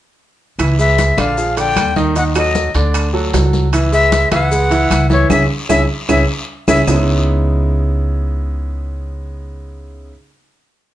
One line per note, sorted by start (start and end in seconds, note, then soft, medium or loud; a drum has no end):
0.59 1.14 C#2 medium
0.59 0.75 E3 medium
0.59 0.75 E4 medium
0.59 0.76 E5 medium
0.59 high conga soft
0.59 high timbale medium
0.59 long guiro medium
0.59 claves medium
0.59 maracas medium
0.79 1.11 G#3 medium
0.79 1.11 G#4 medium
0.79 1.11 B4 medium
0.79 1.21 E5 medium
0.79 high conga soft
0.79 maracas soft
0.98 high conga medium
0.98 high timbale medium
0.98 short guiro medium
0.98 maracas medium
1.17 1.72 A#1 medium
1.17 1.34 D3 medium
1.17 1.34 D4 medium
1.17 1.34 D5 medium
1.17 1.58 F5 medium
1.17 high conga medium
1.17 high timbale medium
1.17 short guiro medium
1.17 claves medium
1.17 maracas soft
1.37 1.54 F3 medium
1.37 1.54 F4 medium
1.37 1.54 G#4 medium
1.37 high conga soft
1.37 long guiro medium
1.37 maracas medium
1.57 1.89 D3 medium
1.57 1.89 D4 medium
1.57 1.90 D5 medium
1.57 1.95 G5 loud
1.57 high conga soft
1.57 high timbale medium
1.57 maracas medium
1.76 2.69 D#2 medium
1.76 high conga medium
1.76 high timbale loud
1.76 short guiro medium
1.76 claves medium
1.76 maracas medium
1.96 2.12 D#3 medium
1.96 2.12 D#4 medium
1.96 2.13 D#5 medium
1.96 high conga medium
1.96 short guiro medium
1.96 maracas soft
2.16 2.32 D#3 medium
2.16 2.32 D#4 medium
2.16 2.32 D#5 medium
2.16 2.24 F#5 medium
2.16 high conga soft
2.16 high timbale medium
2.16 long guiro medium
2.16 maracas medium
2.35 2.68 F#3 medium
2.35 2.68 F#4 medium
2.35 2.68 A4 medium
2.35 2.73 D#5 medium
2.35 high conga soft
2.35 high timbale medium
2.35 claves medium
2.35 maracas medium
2.55 high conga medium
2.55 short guiro medium
2.55 maracas medium
2.74 3.29 D2 medium
2.74 3.07 D3 medium
2.74 3.07 D4 medium
2.74 3.07 D5 medium
2.74 high timbale medium
2.74 short guiro medium
2.74 maracas soft
2.94 high conga soft
2.94 high timbale medium
2.94 long guiro medium
2.94 claves medium
2.94 maracas medium
3.13 3.30 F#3 medium
3.13 3.30 F#4 medium
3.13 3.30 A4 medium
3.13 high conga soft
3.33 4.26 C#2 medium
3.33 3.66 F#3 medium
3.33 3.66 F#4 medium
3.33 3.66 A4 medium
3.33 high conga medium
3.33 high timbale medium
3.33 low timbale medium
3.33 short guiro medium
3.33 maracas medium
3.53 high conga medium
3.53 short guiro medium
3.53 maracas soft
3.73 3.89 E3 medium
3.73 3.89 E4 medium
3.73 3.89 E5 medium
3.73 high timbale medium
3.73 long guiro medium
3.73 claves medium
3.73 maracas medium
3.92 4.25 G#3 medium
3.92 4.25 G#4 medium
3.92 4.25 B4 medium
3.92 4.30 E5 loud
3.92 high conga soft
3.92 maracas medium
4.12 high conga medium
4.12 high timbale medium
4.12 short guiro medium
4.12 maracas medium
4.31 4.87 C#2 medium
4.31 4.48 E3 medium
4.31 4.48 E4 medium
4.31 4.48 E5 medium
4.31 5.07 F#5 medium
4.31 high conga medium
4.31 high timbale medium
4.31 short guiro medium
4.31 claves medium
4.31 maracas soft
4.51 4.67 G#3 medium
4.51 4.68 G#4 medium
4.51 4.68 B4 medium
4.51 high conga soft
4.51 long guiro medium
4.51 maracas medium
4.70 5.03 E3 medium
4.70 5.03 E4 medium
4.70 5.03 E5 medium
4.70 high conga soft
4.70 high timbale medium
4.70 maracas medium
4.90 5.27 C#2 medium
4.90 high conga medium
4.90 high timbale medium
4.90 short guiro medium
4.90 claves medium
4.90 maracas medium
5.10 5.26 E3 medium
5.10 5.27 E4 medium
5.10 5.30 C#5 medium
5.10 5.27 E5 medium
5.10 high conga medium
5.10 short guiro medium
5.10 maracas soft
5.29 5.45 C#2 medium
5.29 5.42 C#4 medium
5.29 5.43 E4 medium
5.29 5.42 G#4 medium
5.29 5.43 E5 loud
5.29 high conga loud
5.29 high timbale medium
5.29 long guiro loud
5.29 claves medium
5.29 maracas medium
5.69 5.84 C#2 medium
5.69 5.82 C#4 medium
5.69 5.82 E4 loud
5.69 5.82 G#4 medium
5.69 5.82 E5 medium
5.69 high conga medium
5.69 high timbale medium
5.69 long guiro medium
5.69 claves medium
5.69 maracas medium
6.09 6.23 C#2 medium
6.09 6.22 C#4 loud
6.09 6.22 E4 loud
6.09 6.21 G#4 medium
6.09 6.22 E5 medium
6.09 high conga medium
6.09 high timbale medium
6.09 long guiro loud
6.09 claves loud
6.09 maracas medium
6.68 6.82 C#2 medium
6.68 6.80 C#4 medium
6.68 6.80 E4 loud
6.68 6.80 G#4 loud
6.68 6.81 E5 loud
6.68 high conga medium
6.68 high timbale loud
6.68 long guiro medium
6.68 claves loud
6.68 maracas loud
6.87 10.09 C#2 medium
6.87 10.09 C#3 medium
6.87 10.10 G#3 medium
6.87 10.10 B3 medium
6.87 10.10 C#4 medium
6.87 10.10 D#4 medium
6.87 10.11 E4 medium
6.87 low conga medium
6.87 low timbale medium
6.87 long guiro loud
6.87 claves medium
6.87 maracas medium